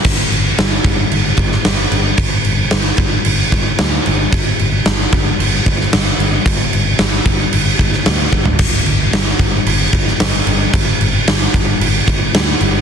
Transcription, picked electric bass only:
\new Staff \with { instrumentName = "Picked electric bass" } { \clef bass \time 4/4 \key c \dorian \tempo 4 = 112 g,,8 g,,8 g,,8 g,,8 g,,8 g,,8 g,,8 g,,8 | g,,8 g,,8 g,,8 g,,8 g,,8 g,,8 d,8 g,,8 | g,,8 g,,8 g,,8 g,,8 g,,8 g,,8 g,,8 g,,8 | g,,8 g,,8 g,,8 g,,8 g,,8 g,,8 d,8 g,,8 |
g,,8 g,,8 g,,8 g,,8 g,,8 g,,8 g,,8 g,,8 | g,,8 g,,8 g,,8 g,,8 g,,8 g,,8 d,8 g,,8 | }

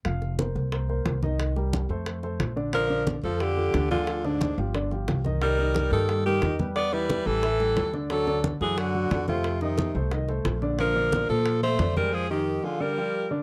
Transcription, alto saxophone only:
\new Staff \with { instrumentName = "Alto saxophone" } { \time 4/4 \key bes \major \tempo 4 = 179 r1 | r1 | bes'4 r8 a'8 g'4. f'8~ | f'8 d'4 r2 r8 |
bes'4. a'4 g'4 r8 | d''8 b'4 a'2 r8 | a'4 r8 aes'8 fis'4. f'8~ | f'8 ees'4 r2 r8 |
bes'4. a'4 c''4 bes'8 | aes'8 g'4 f'8 bes'4. r8 | }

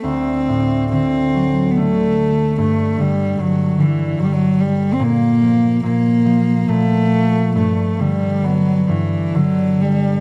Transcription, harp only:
\new Staff \with { instrumentName = "Harp" } { \clef bass \time 3/4 \key g \major \tempo 4 = 70 d,8 a,8 d8 fis8 d4 | g,8 d8 g,8 d8 g,4 | bes,8 f8 bes,8 f8 bes,4 | g,8 d8 b8 g,8 d4 | }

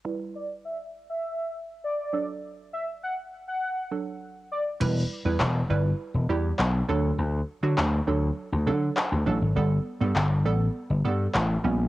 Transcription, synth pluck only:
\new Staff \with { instrumentName = "Synth pluck" } { \time 4/4 \key e \minor \tempo 4 = 101 <g e' b'>2.~ <g e' b'>8 <fis d' a'>8~ | <fis d' a'>2~ <fis d' a'>8 <fis d' a'>4. | <g e' b'>8 r16 <g e' b'>8 r16 <g e' b'>8 r8 <g e' g'>8 r8 <fis d' a'>8~ | <fis d' a'>8 r16 <fis d' fis'>8 r16 <fis d' a'>8 r8 <fis d' a'>8 r8 <fis d' a'>16 r16 |
<g b a'>8 r16 <g b a'>8 r16 <g b a'>8 r8 <g b a'>8 r8 <g b cis'>16 r16 | }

